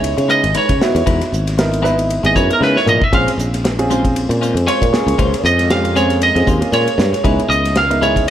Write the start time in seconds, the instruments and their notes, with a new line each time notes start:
Already playing: fretless electric bass C#2, grand piano B3 D#4 E4 G#4, lead electric guitar C#5
0.04 ride
0.17 fretless electric bass C#3, muted clean electric guitar stroke, ride
0.28 clean electric guitar G#3 D#4 E4 B4, lead electric guitar D#5, hi-hat pedal
0.43 fretless electric bass G#1, muted clean electric guitar stroke, ride
0.54 clean electric guitar G#3 D#4 E4 B4, lead electric guitar C#5, ride
0.69 fretless electric bass C#3, kick, ride
0.80 grand piano B3 D#4 E4 F#4, muted clean electric guitar stroke, muted fretless electric bass stroke, snare, hi-hat pedal
0.95 fretless electric bass E2, muted clean electric guitar stroke, snare, ride
1.06 fretless electric bass E2, clean electric guitar G#3 D#4 E4 B4, kick, ride
1.21 snare, ride
1.32 fretless electric bass G#1, muted clean electric guitar stroke, hi-hat pedal
1.47 snare, ride
1.58 grand piano B3 D#4 E4 A#4, muted clean electric guitar stroke, snare, ride
1.72 muted clean electric guitar stroke, ride
1.82 clean electric guitar G#3 D#4 E4 B4, grand piano B3 D#4 E4 B4, snare, hi-hat pedal
1.98 muted clean electric guitar stroke, ride
2.10 ride
2.23 fretless electric bass G#1, grand piano B3 D#4 E4 G#4, lead electric guitar D#5, muted clean electric guitar stroke, ride
2.35 fretless electric bass F#2, clean electric guitar G#3 D#4 E4 B4, lead electric guitar C#5, kick, hi-hat pedal
2.49 grand piano B3 D#4 E4 A#4, muted clean electric guitar stroke, ride
2.53 lead electric guitar A#4
2.61 fretless electric bass C#3, clean electric guitar G#3 D#4 E4 B4, lead electric guitar B4, snare
2.76 lead electric guitar C#5, snare
2.86 fretless electric bass A#2, lead electric guitar D#5, muted clean electric guitar stroke, hi-hat pedal, mid tom
3.01 lead electric guitar E5, muted clean electric guitar stroke, muted fretless electric bass stroke, kick
3.12 fretless electric bass A#1, ambient pad G#3 A#3, clean electric guitar G#3 C#4 F4 C5, grand piano C4 C#4 F4 G#4, lead electric guitar F5, kick, ride
3.28 snare, ride
3.38 fretless electric bass A#1, muted clean electric guitar stroke, hi-hat pedal
3.54 snare, ride
3.64 muted clean electric guitar stroke, snare, ride
3.79 grand piano C4 C#4 F4 G#4, muted clean electric guitar stroke, ride
3.90 clean electric guitar G#3 C#4 F4 C5, grand piano C4 C#4 F4 G#4, hi-hat pedal
4.04 muted clean electric guitar stroke, kick, ride
4.16 ride
4.29 fretless electric bass A#2, muted clean electric guitar stroke, ride
4.41 clean electric guitar G#3 C#4 F4 C5, hi-hat pedal
4.54 fretless electric bass F2, muted clean electric guitar stroke, ride
4.67 clean electric guitar G#3 C#4 F4 C5, lead electric guitar C#5, ride
4.82 fretless electric bass A#2, kick, ride
4.92 grand piano A#3 C#4 F4 G#4, muted fretless electric bass stroke, muted clean electric guitar stroke, snare, hi-hat pedal
5.06 fretless electric bass C#2, muted clean electric guitar stroke, snare, ride
5.18 fretless electric bass C#2, clean electric guitar G#3 C#4 F4 C5, kick, ride
5.34 snare, ride
5.44 fretless electric bass F2, lead electric guitar D#5, muted clean electric guitar stroke, hi-hat pedal
5.59 snare, ride
5.70 grand piano C4 C#4 F4 G4, lead electric guitar F5, muted clean electric guitar stroke, snare, ride
5.84 muted clean electric guitar stroke, ride
5.96 clean electric guitar G#3 C#4 F4 C5, grand piano C4 C#4 F4 G#4, lead electric guitar C#5, snare, hi-hat pedal
6.10 muted clean electric guitar stroke, snare, ride
6.22 lead electric guitar D#5, ride
6.35 fretless electric bass F2, grand piano C4 C#4 F4 G#4, muted clean electric guitar stroke, ride
6.47 fretless electric bass D#2, clean electric guitar G#3 C#4 F4 C5, kick, hi-hat pedal
6.61 grand piano A#3 C#4 F4 G#4, muted clean electric guitar stroke, ride
6.72 fretless electric bass A#2, clean electric guitar G#3 C#4 F4 C5, lead electric guitar C#5, ride
6.88 ride
6.98 fretless electric bass G2, muted clean electric guitar stroke, snare, hi-hat pedal
7.13 muted fretless electric bass stroke, muted clean electric guitar stroke, snare, ride
7.24 fretless electric bass C#2, ambient pad C#3 B3, clean electric guitar G#3 D#4 E4 B4, grand piano B3 D#4 E4 G#4, kick, ride
7.39 ride
7.49 fretless electric bass C#2, lead electric guitar D#5, muted clean electric guitar stroke, hi-hat pedal
7.65 snare, ride
7.75 lead electric guitar F5, muted clean electric guitar stroke, snare, ride
7.90 grand piano B3 D#4 E4 A#4, muted clean electric guitar stroke, ride
8.01 clean electric guitar G#3 D#4 E4 B4, grand piano B3 D#4 E4 G#4, lead electric guitar C#5, hi-hat pedal
8.16 kick, snare, ride